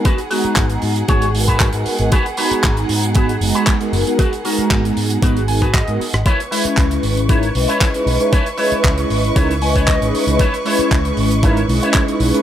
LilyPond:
<<
  \new Staff \with { instrumentName = "Violin section" } { \time 4/4 \key gis \minor \tempo 4 = 116 <gis' fis''>1~ | <gis' fis''>1~ | <gis' fis''>1 | <b' cis'''>1~ |
<b' cis'''>1~ | <b' cis'''>1 | }
  \new Staff \with { instrumentName = "Clean electric guitar" } { \time 4/4 \key gis \minor << { r1 | r1 | r2 r8 gis''8 dis''4 | r1 |
r2 r8 gis''8 dis''4 | r1 | } \\ { <fis' gis' b'>16 r16 <fis' gis' b'>8. r8. <fis' gis' cis''>8 r16 <fis' gis' b'>16 r4 | <fis' gis' b'>16 r16 <fis' gis' b'>8. r8. <fis' gis' b'>8 r16 <fis' gis' b'>16 r4 | <fis' gis' b'>16 r16 <fis' gis' ais'>8. r8. <fis' gis' b'>8 r16 <fis' gis' b'>16 r4 | <e' b' cis''>16 r16 <e' b' e''>8. r8. <e' b' cis''>8 r16 <e' b' cis''>16 r4 |
<e' b' cis''>16 r16 <e' b' cis''>8. r8. <e' b' cis''>8 r16 <e' b' cis''>16 r4 | <e' b' cis''>16 r16 <e' b' cis''>8. r8. <e' b' cis''>8 r16 <e' b' cis''>16 r4 | } >> }
  \new Staff \with { instrumentName = "Analog polysynth" } { \time 4/4 \key gis \minor r8 <gis b dis' fis' ais''>8. <gis b dis' fis' ais''>8. <gis b gis'>16 r16 <gis b dis' fis' ais'>8. <gis b dis' fis' ais'>8 <gis b dis' fis' ais'>16 | r8 <gis b dis' fis' ais''>8. <gis b dis' fis' ais''>8. <gis b dis' fis' gis'>16 r16 <gis b dis' fis' ais''>8. <gis b dis' fis' ais'>8 <gis b dis' fis' ais'>16 | r8 <gis b dis' fis' ais''>8. <gis b dis' fis' ais''>8. <gis b dis' fis' gis'>16 r16 <gis b dis' fis' ais'>16 r8 <gis b dis' fis' ais'>16 r8 | r8 <gis cis' e' b'>8. <gis cis' e' b'>8. <gis cis' dis' e' ais'>16 r16 <gis cis' e' b' dis''>8. <gis cis' dis' e' b'>8 <gis cis' dis' e' b'>16 |
r8 <gis cis' e' b' dis''>8. <gis cis' e' b' dis''>8. <gis cis' dis' e' ais'>16 r16 <gis cis' e' b' dis''>8. <gis cis' dis' e' b'>8 <gis cis' dis' e' b'>16 | r8 <gis cis' e' b' dis''>8. <gis cis' e' b' dis''>8. <gis cis' dis' e' ais'>16 r16 <gis cis' e' b' dis''>8. <gis cis' dis' e' b'>8 <gis cis' dis' e' b'>16 | }
  \new Staff \with { instrumentName = "Picked electric bass" } { \clef bass \time 4/4 \key gis \minor r4 gis,,16 r16 gis,16 r16 gis,,4~ gis,,16 gis,16 r16 gis,,16 | r4 gis,,16 r16 gis,4 fis,,16 r8. fis,,16 r16 | r4 gis,,16 r16 gis,16 r16 gis,,4~ gis,,16 gis,16 r16 gis,,16 | r4 cis,16 r16 gis,,4 b,,16 r8. b,,16 r16 |
r4 cis,16 r16 gis,,16 r16 cis,4~ cis,16 gis,,16 r16 cis,16 | r4 cis,16 r16 gis,,4 b,,16 r8. b,,16 r16 | }
  \new DrumStaff \with { instrumentName = "Drums" } \drummode { \time 4/4 <hh bd>16 hh16 hho16 hh16 <hc hh bd>16 hh16 hho16 hh16 <hh bd>16 hh16 hho16 <hh bd>16 <hc hh bd>16 hh16 hho16 hh16 | <hh bd>16 hh16 hho16 hh16 <hc hh bd>16 hh16 hho16 hh16 <hh bd>16 hh16 hho16 hh16 <hc hh bd>16 hh16 hho16 hh16 | <hh bd>16 hh16 hho16 hh16 <hc hh bd>16 hh16 hho16 hh16 <hh bd>16 hh16 hho16 <hh bd>16 <hc hh bd>16 hh16 hho16 <hh ss>16 | <hh bd>16 hh16 hho16 hh16 <hc hh bd>16 hh16 hho16 hh16 <hh bd>16 hh16 hho16 hh16 <hc hh bd>16 hh16 hho16 hh16 |
<hh bd>16 hh16 hho16 hh16 <hc hh bd>16 hh16 hho16 hh16 <hh bd>16 hh16 hho16 <hh bd>16 <hc hh bd>16 hh16 hho16 hh16 | <hh bd>16 hh16 hho16 hh16 <hc hh bd>16 hh16 hho16 hh16 <hh bd>16 hh16 hho16 hh16 <hc hh bd>16 hh16 hho16 hh16 | }
>>